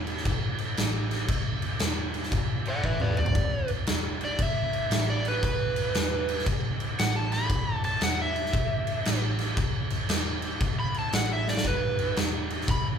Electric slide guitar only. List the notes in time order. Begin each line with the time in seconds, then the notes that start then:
2.68 D5 F#5
2.85 B4 E5
3.01 B4 D5
3.18 D5
4.25 D5
4.42 E5
5.10 D5
5.28 B4
5.45 B4
7.00 F#5
7.16 A5
7.33 B5
7.85 A5
8.03 F#5
8.21 E5
10.80 B5
10.99 A5
11.14 F#5
11.33 E5
11.50 D5
11.67 B4
12.71 B5